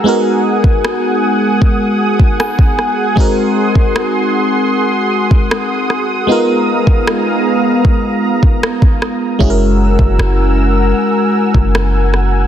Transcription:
0.00 3.12 G#3 medium
0.00 6.25 G#4 medium
0.00 6.25 F#5 medium
0.05 3.13 B3 medium
0.05 3.14 D#4 medium
0.05 3.14 F#4 medium
0.05 3.15 A#4 medium
0.05 3.14 G#5 medium
0.05 3.14 D#6 medium
0.64 kick medium
0.85 cross-stick loud
1.62 kick medium
2.20 kick medium
2.40 3.13 G#5 medium
2.40 cross-stick loud
2.59 kick medium
2.79 cross-stick medium
3.16 6.24 G#3 medium
3.16 6.25 C4 medium
3.16 6.25 D#4 medium
3.16 6.26 F#4 medium
3.16 6.26 C6 medium
3.16 9.36 D#6 medium
3.16 kick medium
3.20 6.26 A#4 medium
3.75 kick medium
3.96 cross-stick loud
5.31 kick medium
5.51 cross-stick loud
5.90 cross-stick medium
6.27 9.36 G#3 medium
6.27 9.38 G#3 medium
6.27 9.36 B3 medium
6.27 9.38 B3 medium
6.27 9.37 D#4 medium
6.27 9.37 F4 medium
6.27 9.38 F5 medium
6.27 9.37 A#5 medium
6.32 9.38 A#4 medium
6.87 kick medium
7.07 cross-stick loud
7.85 kick medium
8.43 kick medium
8.63 cross-stick loud
8.82 kick medium
9.02 cross-stick medium
9.39 9.97 F#1 loud
9.39 12.47 G#3 medium
9.39 12.47 C#4 medium
9.39 12.47 E4 medium
9.39 12.47 F#4 medium
9.39 12.47 A#4 medium
9.39 12.47 F#5 medium
9.39 12.47 G#5 medium
9.39 12.47 E6 medium
9.39 kick loud
9.44 9.49 G#4 medium
9.50 12.47 A#4 medium
9.99 10.18 F#1 medium
9.99 kick medium
10.19 10.93 F#1 medium
10.19 cross-stick loud
11.54 12.47 F#1 medium
11.54 kick medium
11.75 cross-stick loud
12.14 cross-stick medium

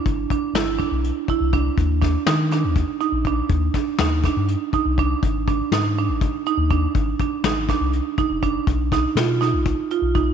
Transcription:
0.06 0.25 G1 medium
0.06 kick medium
0.06 closed hi-hat medium
0.30 0.53 D4 medium
0.30 kick medium
0.30 closed hi-hat medium
0.54 0.83 G1 medium
0.54 0.77 E4 medium
0.54 snare loud
0.54 closed hi-hat medium
0.79 1.22 D4 medium
0.79 kick medium
0.79 closed hi-hat soft
0.91 1.11 B1 medium
1.04 closed hi-hat medium
1.28 1.51 E4 medium
1.28 kick medium
1.28 closed hi-hat medium
1.41 1.70 C2 medium
1.53 1.75 D4 medium
1.53 kick medium
1.53 closed hi-hat medium
1.78 2.16 D#2 medium
1.78 kick medium
1.78 closed hi-hat medium
2.02 2.24 D4 medium
2.02 kick medium
2.02 snare soft
2.02 closed hi-hat medium
2.26 2.65 D#3 medium
2.26 2.49 D#4 medium
2.26 snare loud
2.26 closed hi-hat medium
2.51 2.96 D4 medium
2.51 snare soft
2.51 closed hi-hat medium
2.64 2.83 D#2 medium
2.76 kick medium
2.76 closed hi-hat medium
3.01 3.22 D#4 medium
3.01 closed hi-hat medium
3.12 3.42 A#1 medium
3.25 3.48 D4 medium
3.25 kick medium
3.25 closed hi-hat medium
3.49 3.69 D#2 medium
3.49 kick medium
3.49 closed hi-hat medium
3.74 3.97 D4 medium
3.74 kick medium
3.74 snare soft
3.74 closed hi-hat medium
3.99 4.28 D#2 medium
3.99 4.22 D#4 medium
3.99 snare loud
3.99 closed hi-hat medium
4.24 4.68 D4 medium
4.24 kick medium
4.24 snare soft
4.24 closed hi-hat medium
4.37 4.56 G2 medium
4.48 closed hi-hat medium
4.73 4.95 D#4 medium
4.73 kick medium
4.73 closed hi-hat medium
4.86 5.14 C2 medium
4.98 5.20 D4 medium
4.98 kick medium
4.98 closed hi-hat medium
5.23 5.61 G#1 loud
5.23 kick medium
5.23 closed hi-hat medium
5.48 5.69 D4 medium
5.48 kick medium
5.48 closed hi-hat medium
5.72 6.10 G#2 medium
5.72 5.94 D#4 medium
5.72 snare medium
5.72 closed hi-hat medium
5.97 6.41 D4 medium
5.97 closed hi-hat soft
6.09 6.28 G#1 medium
6.21 kick medium
6.21 closed hi-hat medium
6.46 6.68 D#4 medium
6.46 closed hi-hat medium
6.57 6.87 D#2 medium
6.70 6.92 D4 medium
6.70 kick medium
6.70 closed hi-hat soft
6.95 7.14 G#1 medium
6.95 kick medium
6.95 closed hi-hat medium
7.19 7.42 D4 medium
7.19 kick medium
7.19 closed hi-hat medium
7.44 7.73 G#1 medium
7.44 7.67 D#4 medium
7.44 snare loud
7.44 closed hi-hat medium
7.68 8.13 D4 medium
7.68 kick medium
7.68 snare soft
7.68 closed hi-hat medium
7.81 8.00 C2 medium
7.93 closed hi-hat medium
8.18 8.40 D#4 medium
8.18 kick medium
8.18 closed hi-hat medium
8.30 8.59 F1 medium
8.43 8.64 D4 medium
8.43 kick medium
8.43 closed hi-hat medium
8.67 9.06 B1 medium
8.67 kick loud
8.67 closed hi-hat medium
8.92 9.14 D#4 medium
8.92 kick medium
8.92 snare soft
8.92 closed hi-hat medium
9.15 9.55 B2 medium
9.15 9.38 F4 medium
9.15 snare medium
9.15 closed hi-hat medium
9.41 9.84 D#4 medium
9.41 snare soft
9.41 closed hi-hat medium
9.53 9.72 B1 medium
9.66 kick medium
9.66 closed hi-hat medium
9.90 10.13 F4 medium
9.90 closed hi-hat medium
10.02 10.31 B1 medium
10.15 10.34 D#4 medium
10.15 kick medium
10.15 closed hi-hat medium

